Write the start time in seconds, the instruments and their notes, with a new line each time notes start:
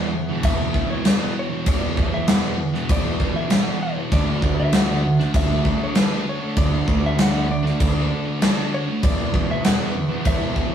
Already playing: distorted electric guitar E2 E3, picked electric bass E2, clean electric guitar F#5
0.00 distorted electric guitar B2
0.13 muted distorted electric guitar stroke
0.29 distorted electric guitar B2 E3
0.43 picked electric bass E2, clean electric guitar E5, kick, crash
0.59 distorted electric guitar B2 E3
0.74 distorted electric guitar E2 B2 E3, kick
0.90 distorted electric guitar B2 E3, clean electric guitar C#5
1.04 distorted electric guitar E2 B2 E3, clean electric guitar B4, snare, crash
1.20 distorted electric guitar B2 E3
1.39 clean electric guitar C#5
1.50 distorted electric guitar B2 E3
1.66 distorted electric guitar E2 B2 E3, picked electric bass E2, clean electric guitar D5, kick, crash
1.97 distorted electric guitar E2 B2 E3, picked electric bass E2, kick
2.04 clean electric guitar C#5
2.14 clean electric guitar E5
2.27 distorted electric guitar E2 B2 E3, clean electric guitar F#5, snare, crash
2.43 distorted electric guitar B2 E3
2.58 muted distorted electric guitar stroke
2.74 distorted electric guitar B2 E3, snare
2.89 picked electric bass E2, clean electric guitar D5, kick, crash
3.05 distorted electric guitar B2 E3
3.20 distorted electric guitar E2 B2 E3, kick
3.35 distorted electric guitar B2 E3, clean electric guitar E5
3.50 distorted electric guitar E2 B2 E3, clean electric guitar F#5, snare, crash
3.66 distorted electric guitar B2 E3
3.83 clean electric guitar C#5
3.95 distorted electric guitar B2 E3
4.11 picked electric bass D2, distorted electric guitar D3 A3 D4, clean electric guitar D5, kick, crash
4.42 picked electric bass D2, distorted electric guitar D3 A3 D4, kick
4.60 clean electric guitar E5
4.73 distorted electric guitar D3 A3 D4, clean electric guitar F#5, snare, crash
4.88 distorted electric guitar A3 D4
5.04 muted distorted electric guitar stroke
5.19 distorted electric guitar A3 D4, snare
5.34 picked electric bass D2, clean electric guitar E5, kick, crash
5.49 distorted electric guitar A3 D4
5.65 distorted electric guitar D3 A3 D4, kick
5.81 distorted electric guitar A3 D4, clean electric guitar C#5
5.95 distorted electric guitar D3 A3 D4, clean electric guitar B4, snare, crash
6.10 distorted electric guitar A3 D4
6.29 clean electric guitar C#5
6.40 distorted electric guitar A3 D4
6.56 picked electric bass D2, distorted electric guitar D3 A3 D4, clean electric guitar D5, kick, crash
6.87 picked electric bass D2, distorted electric guitar D3 A3 D4, kick
7.06 clean electric guitar E5
7.17 distorted electric guitar D3 A3 D4, snare, crash
7.22 clean electric guitar F#5
7.32 distorted electric guitar A3 D4
7.47 muted distorted electric guitar stroke
7.51 clean electric guitar D5
7.63 distorted electric guitar A3 D4, snare
7.80 picked electric bass D2, kick, crash
7.93 distorted electric guitar A3 D4
8.09 distorted electric guitar D3 A3 D4
8.24 distorted electric guitar A3 D4
8.39 distorted electric guitar D3 A3 D4, snare, crash
8.56 distorted electric guitar A3 D4
8.74 clean electric guitar C#5
8.87 distorted electric guitar A3 D4
9.03 distorted electric guitar E2 B2 E3, picked electric bass E2, clean electric guitar D5, kick, crash
9.33 distorted electric guitar E2 B2 E3, picked electric bass E2, kick
9.51 clean electric guitar E5
9.64 distorted electric guitar E2 B2 E3, clean electric guitar F#5, snare, crash
9.78 distorted electric guitar B2 E3
9.95 muted distorted electric guitar stroke
10.08 distorted electric guitar B2 E3
10.25 picked electric bass E2, clean electric guitar E5, kick, crash
10.38 distorted electric guitar B2 E3
10.55 distorted electric guitar E2 B2 E3, kick
10.69 distorted electric guitar E3